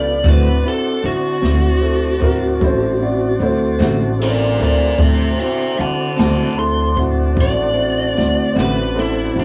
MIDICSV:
0, 0, Header, 1, 8, 480
1, 0, Start_track
1, 0, Tempo, 792602
1, 144, Time_signature, 12, 3, 24, 8
1, 5720, End_track
2, 0, Start_track
2, 0, Title_t, "Lead electric guitar"
2, 0, Program_c, 0, 29
2, 0, Note_on_c, 0, 74, 70
2, 154, Note_off_c, 0, 74, 0
2, 177, Note_on_c, 0, 71, 67
2, 394, Note_off_c, 0, 71, 0
2, 413, Note_on_c, 0, 69, 65
2, 631, Note_off_c, 0, 69, 0
2, 641, Note_on_c, 0, 66, 65
2, 2047, Note_off_c, 0, 66, 0
2, 2558, Note_on_c, 0, 70, 65
2, 2561, Note_on_c, 0, 74, 73
2, 2785, Note_off_c, 0, 74, 0
2, 2790, Note_off_c, 0, 70, 0
2, 2804, Note_on_c, 0, 70, 65
2, 2808, Note_on_c, 0, 74, 71
2, 3017, Note_off_c, 0, 70, 0
2, 3028, Note_off_c, 0, 74, 0
2, 3042, Note_on_c, 0, 72, 59
2, 3047, Note_on_c, 0, 76, 72
2, 3256, Note_off_c, 0, 72, 0
2, 3266, Note_off_c, 0, 76, 0
2, 3272, Note_on_c, 0, 72, 57
2, 3276, Note_on_c, 0, 76, 68
2, 3491, Note_off_c, 0, 72, 0
2, 3502, Note_off_c, 0, 76, 0
2, 3516, Note_on_c, 0, 78, 63
2, 3519, Note_on_c, 0, 81, 68
2, 3733, Note_off_c, 0, 78, 0
2, 3744, Note_off_c, 0, 81, 0
2, 3750, Note_on_c, 0, 78, 66
2, 3753, Note_on_c, 0, 81, 65
2, 3969, Note_off_c, 0, 78, 0
2, 3979, Note_off_c, 0, 81, 0
2, 3990, Note_on_c, 0, 84, 84
2, 4219, Note_off_c, 0, 84, 0
2, 4486, Note_on_c, 0, 74, 94
2, 5172, Note_off_c, 0, 74, 0
2, 5213, Note_on_c, 0, 71, 69
2, 5430, Note_off_c, 0, 71, 0
2, 5450, Note_on_c, 0, 64, 68
2, 5668, Note_off_c, 0, 64, 0
2, 5691, Note_on_c, 0, 62, 72
2, 5720, Note_off_c, 0, 62, 0
2, 5720, End_track
3, 0, Start_track
3, 0, Title_t, "Upright piano"
3, 0, Program_c, 1, 0
3, 1328, Note_on_c, 1, 69, 49
3, 1353, Note_on_c, 1, 70, 77
3, 1354, Note_off_c, 1, 69, 0
3, 1581, Note_off_c, 1, 70, 0
3, 1599, Note_on_c, 1, 72, 78
3, 1824, Note_off_c, 1, 72, 0
3, 1833, Note_on_c, 1, 74, 70
3, 2061, Note_off_c, 1, 74, 0
3, 2072, Note_on_c, 1, 69, 67
3, 2072, Note_on_c, 1, 72, 72
3, 2403, Note_off_c, 1, 69, 0
3, 2417, Note_off_c, 1, 72, 0
3, 5720, End_track
4, 0, Start_track
4, 0, Title_t, "Grand piano"
4, 0, Program_c, 2, 0
4, 0, Note_on_c, 2, 59, 47
4, 0, Note_on_c, 2, 65, 44
4, 0, Note_on_c, 2, 69, 54
4, 84, Note_off_c, 2, 59, 0
4, 87, Note_off_c, 2, 65, 0
4, 90, Note_off_c, 2, 69, 0
4, 143, Note_on_c, 2, 60, 53
4, 153, Note_on_c, 2, 64, 49
4, 158, Note_on_c, 2, 66, 61
4, 323, Note_off_c, 2, 60, 0
4, 328, Note_off_c, 2, 64, 0
4, 330, Note_off_c, 2, 66, 0
4, 386, Note_on_c, 2, 60, 48
4, 388, Note_on_c, 2, 64, 43
4, 396, Note_on_c, 2, 66, 52
4, 565, Note_off_c, 2, 60, 0
4, 566, Note_off_c, 2, 64, 0
4, 570, Note_off_c, 2, 66, 0
4, 619, Note_on_c, 2, 60, 44
4, 627, Note_on_c, 2, 64, 47
4, 632, Note_on_c, 2, 66, 53
4, 801, Note_off_c, 2, 60, 0
4, 805, Note_off_c, 2, 64, 0
4, 807, Note_off_c, 2, 66, 0
4, 856, Note_on_c, 2, 60, 48
4, 863, Note_on_c, 2, 64, 47
4, 869, Note_on_c, 2, 66, 52
4, 1039, Note_off_c, 2, 60, 0
4, 1043, Note_off_c, 2, 64, 0
4, 1046, Note_off_c, 2, 66, 0
4, 1094, Note_on_c, 2, 60, 47
4, 1100, Note_on_c, 2, 64, 44
4, 1105, Note_on_c, 2, 69, 53
4, 1278, Note_off_c, 2, 60, 0
4, 1282, Note_off_c, 2, 64, 0
4, 1284, Note_off_c, 2, 69, 0
4, 1333, Note_on_c, 2, 60, 60
4, 1339, Note_on_c, 2, 64, 54
4, 1342, Note_on_c, 2, 66, 66
4, 1518, Note_off_c, 2, 60, 0
4, 1521, Note_off_c, 2, 64, 0
4, 1522, Note_off_c, 2, 66, 0
4, 1574, Note_on_c, 2, 60, 60
4, 1582, Note_on_c, 2, 64, 58
4, 1588, Note_on_c, 2, 69, 65
4, 1759, Note_off_c, 2, 60, 0
4, 1763, Note_off_c, 2, 64, 0
4, 1766, Note_off_c, 2, 69, 0
4, 1811, Note_on_c, 2, 60, 57
4, 1814, Note_on_c, 2, 64, 53
4, 1820, Note_on_c, 2, 66, 63
4, 1997, Note_off_c, 2, 60, 0
4, 1999, Note_off_c, 2, 64, 0
4, 2001, Note_off_c, 2, 66, 0
4, 2055, Note_on_c, 2, 60, 54
4, 2064, Note_on_c, 2, 64, 46
4, 2066, Note_on_c, 2, 66, 57
4, 2239, Note_off_c, 2, 60, 0
4, 2243, Note_off_c, 2, 64, 0
4, 2244, Note_off_c, 2, 66, 0
4, 2292, Note_on_c, 2, 60, 61
4, 2299, Note_on_c, 2, 64, 56
4, 2304, Note_on_c, 2, 66, 70
4, 2477, Note_off_c, 2, 60, 0
4, 2481, Note_off_c, 2, 64, 0
4, 2483, Note_off_c, 2, 66, 0
4, 2534, Note_on_c, 2, 60, 44
4, 2536, Note_on_c, 2, 64, 45
4, 2541, Note_on_c, 2, 69, 57
4, 2718, Note_off_c, 2, 60, 0
4, 2719, Note_off_c, 2, 64, 0
4, 2722, Note_off_c, 2, 69, 0
4, 2768, Note_on_c, 2, 60, 46
4, 2775, Note_on_c, 2, 64, 45
4, 2780, Note_on_c, 2, 69, 51
4, 2955, Note_off_c, 2, 60, 0
4, 2959, Note_off_c, 2, 64, 0
4, 2961, Note_off_c, 2, 69, 0
4, 3010, Note_on_c, 2, 60, 59
4, 3017, Note_on_c, 2, 64, 53
4, 3025, Note_on_c, 2, 69, 62
4, 3196, Note_off_c, 2, 60, 0
4, 3200, Note_off_c, 2, 64, 0
4, 3203, Note_off_c, 2, 69, 0
4, 3248, Note_on_c, 2, 60, 50
4, 3257, Note_on_c, 2, 64, 46
4, 3262, Note_on_c, 2, 66, 53
4, 3435, Note_off_c, 2, 60, 0
4, 3440, Note_off_c, 2, 64, 0
4, 3442, Note_off_c, 2, 66, 0
4, 3488, Note_on_c, 2, 60, 53
4, 3495, Note_on_c, 2, 64, 47
4, 3500, Note_on_c, 2, 66, 58
4, 3675, Note_off_c, 2, 60, 0
4, 3678, Note_off_c, 2, 64, 0
4, 3681, Note_off_c, 2, 66, 0
4, 3731, Note_on_c, 2, 60, 48
4, 3738, Note_on_c, 2, 64, 44
4, 3747, Note_on_c, 2, 66, 58
4, 3916, Note_off_c, 2, 60, 0
4, 3920, Note_off_c, 2, 64, 0
4, 3924, Note_off_c, 2, 66, 0
4, 3979, Note_on_c, 2, 60, 49
4, 3985, Note_on_c, 2, 64, 45
4, 3989, Note_on_c, 2, 69, 58
4, 4160, Note_off_c, 2, 60, 0
4, 4163, Note_off_c, 2, 64, 0
4, 4165, Note_off_c, 2, 69, 0
4, 4212, Note_on_c, 2, 60, 52
4, 4219, Note_on_c, 2, 64, 47
4, 4225, Note_on_c, 2, 66, 57
4, 4397, Note_off_c, 2, 60, 0
4, 4400, Note_off_c, 2, 64, 0
4, 4403, Note_off_c, 2, 66, 0
4, 4447, Note_on_c, 2, 60, 50
4, 4452, Note_on_c, 2, 64, 44
4, 4459, Note_on_c, 2, 66, 58
4, 4634, Note_off_c, 2, 60, 0
4, 4636, Note_off_c, 2, 64, 0
4, 4640, Note_off_c, 2, 66, 0
4, 4684, Note_on_c, 2, 60, 54
4, 4686, Note_on_c, 2, 64, 46
4, 4694, Note_on_c, 2, 66, 51
4, 4873, Note_off_c, 2, 60, 0
4, 4873, Note_off_c, 2, 64, 0
4, 4878, Note_off_c, 2, 66, 0
4, 4932, Note_on_c, 2, 60, 48
4, 4932, Note_on_c, 2, 64, 41
4, 4940, Note_on_c, 2, 66, 54
4, 5116, Note_off_c, 2, 60, 0
4, 5117, Note_off_c, 2, 64, 0
4, 5120, Note_off_c, 2, 66, 0
4, 5170, Note_on_c, 2, 60, 55
4, 5178, Note_on_c, 2, 64, 49
4, 5185, Note_on_c, 2, 66, 61
4, 5355, Note_off_c, 2, 60, 0
4, 5359, Note_off_c, 2, 64, 0
4, 5363, Note_off_c, 2, 66, 0
4, 5417, Note_on_c, 2, 60, 54
4, 5419, Note_on_c, 2, 64, 46
4, 5425, Note_on_c, 2, 69, 54
4, 5598, Note_off_c, 2, 60, 0
4, 5600, Note_off_c, 2, 64, 0
4, 5602, Note_off_c, 2, 69, 0
4, 5650, Note_on_c, 2, 60, 52
4, 5655, Note_on_c, 2, 64, 47
4, 5661, Note_on_c, 2, 66, 58
4, 5720, Note_off_c, 2, 60, 0
4, 5720, Note_off_c, 2, 64, 0
4, 5720, Note_off_c, 2, 66, 0
4, 5720, End_track
5, 0, Start_track
5, 0, Title_t, "Tonewheel organ"
5, 0, Program_c, 3, 16
5, 0, Note_on_c, 3, 59, 69
5, 0, Note_on_c, 3, 62, 68
5, 0, Note_on_c, 3, 65, 60
5, 0, Note_on_c, 3, 67, 61
5, 114, Note_off_c, 3, 65, 0
5, 116, Note_off_c, 3, 62, 0
5, 118, Note_off_c, 3, 59, 0
5, 118, Note_off_c, 3, 67, 0
5, 137, Note_on_c, 3, 60, 63
5, 137, Note_on_c, 3, 66, 65
5, 139, Note_on_c, 3, 62, 66
5, 142, Note_on_c, 3, 81, 61
5, 2995, Note_off_c, 3, 60, 0
5, 2995, Note_off_c, 3, 66, 0
5, 2996, Note_off_c, 3, 62, 0
5, 2998, Note_off_c, 3, 81, 0
5, 3015, Note_on_c, 3, 60, 62
5, 3017, Note_on_c, 3, 69, 60
5, 3018, Note_on_c, 3, 66, 66
5, 3019, Note_on_c, 3, 62, 59
5, 5720, Note_off_c, 3, 60, 0
5, 5720, Note_off_c, 3, 62, 0
5, 5720, Note_off_c, 3, 66, 0
5, 5720, Note_off_c, 3, 69, 0
5, 5720, End_track
6, 0, Start_track
6, 0, Title_t, "Clean electric guitar"
6, 0, Program_c, 4, 27
6, 141, Note_on_c, 4, 50, 58
6, 147, Note_on_c, 4, 57, 58
6, 151, Note_on_c, 4, 60, 61
6, 155, Note_on_c, 4, 66, 75
6, 286, Note_off_c, 4, 50, 0
6, 289, Note_off_c, 4, 57, 0
6, 291, Note_off_c, 4, 60, 0
6, 293, Note_off_c, 4, 66, 0
6, 860, Note_on_c, 4, 66, 48
6, 868, Note_on_c, 4, 60, 52
6, 870, Note_on_c, 4, 57, 44
6, 873, Note_on_c, 4, 50, 42
6, 1005, Note_off_c, 4, 66, 0
6, 1009, Note_off_c, 4, 60, 0
6, 1010, Note_off_c, 4, 57, 0
6, 1012, Note_off_c, 4, 50, 0
6, 2295, Note_on_c, 4, 66, 58
6, 2300, Note_on_c, 4, 60, 57
6, 2301, Note_on_c, 4, 57, 54
6, 2307, Note_on_c, 4, 50, 48
6, 2443, Note_off_c, 4, 66, 0
6, 2445, Note_off_c, 4, 60, 0
6, 2446, Note_off_c, 4, 57, 0
6, 2449, Note_off_c, 4, 50, 0
6, 3732, Note_on_c, 4, 66, 49
6, 3736, Note_on_c, 4, 60, 58
6, 3742, Note_on_c, 4, 57, 46
6, 3745, Note_on_c, 4, 50, 43
6, 3881, Note_off_c, 4, 66, 0
6, 3883, Note_off_c, 4, 60, 0
6, 3886, Note_off_c, 4, 57, 0
6, 3887, Note_off_c, 4, 50, 0
6, 5181, Note_on_c, 4, 66, 57
6, 5185, Note_on_c, 4, 60, 46
6, 5189, Note_on_c, 4, 57, 49
6, 5192, Note_on_c, 4, 50, 44
6, 5325, Note_off_c, 4, 66, 0
6, 5327, Note_off_c, 4, 60, 0
6, 5329, Note_off_c, 4, 57, 0
6, 5330, Note_off_c, 4, 50, 0
6, 5720, End_track
7, 0, Start_track
7, 0, Title_t, "Upright bass"
7, 0, Program_c, 5, 32
7, 0, Note_on_c, 5, 37, 66
7, 128, Note_off_c, 5, 37, 0
7, 150, Note_on_c, 5, 38, 81
7, 368, Note_off_c, 5, 38, 0
7, 629, Note_on_c, 5, 50, 81
7, 847, Note_off_c, 5, 50, 0
7, 862, Note_on_c, 5, 38, 81
7, 1558, Note_off_c, 5, 38, 0
7, 1586, Note_on_c, 5, 33, 89
7, 2040, Note_off_c, 5, 33, 0
7, 2058, Note_on_c, 5, 38, 77
7, 2281, Note_off_c, 5, 38, 0
7, 2302, Note_on_c, 5, 33, 93
7, 2758, Note_off_c, 5, 33, 0
7, 2784, Note_on_c, 5, 38, 70
7, 3004, Note_off_c, 5, 38, 0
7, 3023, Note_on_c, 5, 38, 91
7, 3243, Note_off_c, 5, 38, 0
7, 3507, Note_on_c, 5, 50, 83
7, 3726, Note_off_c, 5, 50, 0
7, 3749, Note_on_c, 5, 38, 85
7, 4441, Note_off_c, 5, 38, 0
7, 4462, Note_on_c, 5, 33, 84
7, 4917, Note_off_c, 5, 33, 0
7, 4955, Note_on_c, 5, 38, 80
7, 5169, Note_off_c, 5, 38, 0
7, 5186, Note_on_c, 5, 33, 92
7, 5638, Note_off_c, 5, 33, 0
7, 5668, Note_on_c, 5, 33, 72
7, 5720, Note_off_c, 5, 33, 0
7, 5720, End_track
8, 0, Start_track
8, 0, Title_t, "Drums"
8, 144, Note_on_c, 9, 42, 72
8, 147, Note_on_c, 9, 36, 97
8, 205, Note_off_c, 9, 42, 0
8, 208, Note_off_c, 9, 36, 0
8, 625, Note_on_c, 9, 42, 54
8, 685, Note_off_c, 9, 42, 0
8, 860, Note_on_c, 9, 42, 74
8, 877, Note_on_c, 9, 38, 81
8, 921, Note_off_c, 9, 42, 0
8, 938, Note_off_c, 9, 38, 0
8, 1344, Note_on_c, 9, 36, 76
8, 1344, Note_on_c, 9, 42, 57
8, 1404, Note_off_c, 9, 36, 0
8, 1405, Note_off_c, 9, 42, 0
8, 1582, Note_on_c, 9, 42, 64
8, 1583, Note_on_c, 9, 36, 91
8, 1642, Note_off_c, 9, 42, 0
8, 1643, Note_off_c, 9, 36, 0
8, 2060, Note_on_c, 9, 42, 49
8, 2120, Note_off_c, 9, 42, 0
8, 2296, Note_on_c, 9, 42, 61
8, 2313, Note_on_c, 9, 38, 85
8, 2356, Note_off_c, 9, 42, 0
8, 2373, Note_off_c, 9, 38, 0
8, 2778, Note_on_c, 9, 42, 53
8, 2839, Note_off_c, 9, 42, 0
8, 3019, Note_on_c, 9, 36, 95
8, 3020, Note_on_c, 9, 42, 70
8, 3079, Note_off_c, 9, 36, 0
8, 3081, Note_off_c, 9, 42, 0
8, 3499, Note_on_c, 9, 42, 49
8, 3559, Note_off_c, 9, 42, 0
8, 3738, Note_on_c, 9, 42, 71
8, 3755, Note_on_c, 9, 38, 87
8, 3799, Note_off_c, 9, 42, 0
8, 3816, Note_off_c, 9, 38, 0
8, 4222, Note_on_c, 9, 36, 68
8, 4224, Note_on_c, 9, 42, 64
8, 4283, Note_off_c, 9, 36, 0
8, 4285, Note_off_c, 9, 42, 0
8, 4458, Note_on_c, 9, 42, 75
8, 4462, Note_on_c, 9, 36, 104
8, 4519, Note_off_c, 9, 42, 0
8, 4522, Note_off_c, 9, 36, 0
8, 4947, Note_on_c, 9, 42, 63
8, 4964, Note_on_c, 9, 38, 29
8, 5008, Note_off_c, 9, 42, 0
8, 5025, Note_off_c, 9, 38, 0
8, 5184, Note_on_c, 9, 42, 70
8, 5200, Note_on_c, 9, 38, 93
8, 5244, Note_off_c, 9, 42, 0
8, 5261, Note_off_c, 9, 38, 0
8, 5668, Note_on_c, 9, 42, 54
8, 5720, Note_off_c, 9, 42, 0
8, 5720, End_track
0, 0, End_of_file